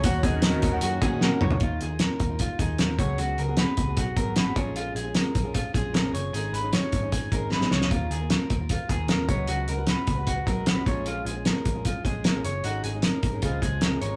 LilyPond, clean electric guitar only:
\new Staff \with { instrumentName = "Clean electric guitar" } { \time 4/4 \key ees \minor \tempo 4 = 152 ges'8 aes'8 bes'4 ges'8 aes'8 bes'8 des''8 | f'8 aes'8 bes'4 f'8 aes'8 bes'8 des''8 | ges'8 bes'8 ces''4 ges'8 bes'8 ces''8 des''8 | f'8 aes'8 bes'4 f'8 aes'8 bes'8 des''8 |
aes'8 ces''8 des''4 aes'8 bes'8 ces''8 des''8 | f'8 aes'8 bes'4 f'8 aes'8 bes'8 des''8 | ges'8 bes'8 ces''4 ges'8 bes'8 ces''8 des''8 | f'8 aes'8 bes'4 f'8 aes'8 bes'8 des''8 |
ges'8 aes'8 bes'4 f'8 aes'8 bes'8 des''8 | }